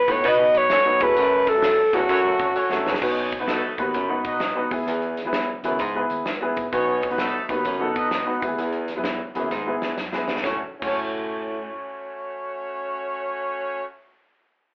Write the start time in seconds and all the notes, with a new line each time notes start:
Already playing: B4
0.07 F#1 A2 F#3 B3 D#4 F#4 B4, kick, ride, tambourine
0.12 C#5
0.24 C#2 B2 B3 D#4 F#4 B4, kick, ride, tambourine
0.28 D#5
0.38 F#3 B3 D#4 F#4 B4
0.54 B1 B3 D#4 F#4 B4, ride, tambourine
0.58 C#5
0.70 E1 C#4 F#4 A4 C#5, snare, ride, tambourine
0.84 F#3 B3 D#4 F#4 B4
1.00 F#1 E2 F#3 A3 C#4 F#4 A4 B4, kick, ride, tambourine
1.16 F#1 F#2, ride, tambourine
1.47 E1 A4, kick, snare, ride, tambourine
1.54 F#3 A3 C#4 F#4 A4
1.62 snare, ride, tambourine
1.78 muted fingered electric bass stroke
1.93 F#1 E2 F#3 A3 C#4 F#4 A4 C#5, kick, ride, tambourine
2.09 F#2 C#4 F#4 A4 C#5, kick, ride, tambourine
2.24 E1 F#3 A3 C#4 F#4 A4
2.39 F#1 C#4 F#4 A4 C#5, kick, ride, tambourine
2.47 G#1
2.55 C#4 F#4 A4 C#5, tambourine
2.70 F#1 F#3 A3 C#4 F#4 A4, snare
2.86 G#1 E2, snare, tambourine
2.94 A1, snare
3.00 B1 B2 B3 C#4 D#4 F#4 B4 C#5, kick, crash, tambourine
3.32 kick, closed hi-hat, tambourine
3.39 C#2 B3 D#4 F#4 B4
3.47 A3 D#4 F#4 A4, snare, closed hi-hat, tambourine
3.77 B1 D#2 B3 D#4 F#4 B4, kick, closed hi-hat, tambourine
3.86 D#2
3.94 F#1 F#2, kick, closed hi-hat, tambourine
4.08 B3 D#4 F#4 B4
4.25 B2 D#4 F#4 B4 D#5, kick, closed hi-hat, tambourine
4.40 snare, closed hi-hat, tambourine
4.55 B3 D#4 F#4 B4
4.71 E2 B3 E4 G#4 B4, kick, open hi-hat, tambourine
4.79 D#2
4.87 E2, closed hi-hat, tambourine
5.02 closed hi-hat
5.17 snare, closed hi-hat, tambourine
5.25 E2 B3 E4 G#4 B4
5.33 snare, closed hi-hat, tambourine
5.63 D#2 F#2 B3 E4 G#4 B4, closed hi-hat, tambourine
5.71 C#2
5.79 G#2, kick, closed hi-hat, tambourine
5.95 B3 E4 G#4 B4
6.10 D#2, closed hi-hat, tambourine
6.26 E2, snare, closed hi-hat, tambourine
6.41 B3 E4 G#4 B4
6.56 A1, kick, closed hi-hat, tambourine
6.72 B1 B2 B3 C#4 D#4 F#4 B4 C#5, kick, closed hi-hat, tambourine
7.02 kick, closed hi-hat, tambourine
7.10 C#2 B3 D#4 F#4 B4, closed hi-hat
7.18 A3 D#4 F#4 A4, snare, closed hi-hat, tambourine
7.48 B1 D#2 B3 D#4 F#4 B4, kick, closed hi-hat, tambourine
7.57 D#2
7.65 F#1 F#2, kick, closed hi-hat, tambourine
7.79 B3 D#4 F#4 A4
7.96 B2 D#4 F#4 B4 D#5, kick, closed hi-hat, tambourine
8.11 snare, closed hi-hat, tambourine
8.25 B3 D#4 F#4 B4
8.40 E2 B3 E4 G4 B4, kick, closed hi-hat, tambourine
8.47 D#2 G#4
8.58 E2, closed hi-hat, tambourine
8.72 closed hi-hat
8.88 snare, closed hi-hat, tambourine
8.96 F#2 B3 E4 G#4 B4
9.04 snare, closed hi-hat, tambourine
9.35 E2 F#2 B3 E4 G#4 B4, closed hi-hat, tambourine
9.43 D#2
9.51 G#2, kick, snare, tambourine
9.66 B3 E4 G#4 B4
9.82 E2, snare, tambourine
9.98 F#2, snare, tambourine
10.12 B3 E4 G#4 B4, snare
10.28 snare, tambourine
10.36 E2, snare
10.41 F#1 A2 A3 C#4 F#4 C#5, kick, snare, tambourine
10.46 A4 C#5
10.79 F#1 A2 C#4 F#4 C#5, kick, crash, tambourine
10.83 A3 F#4 A4 C#5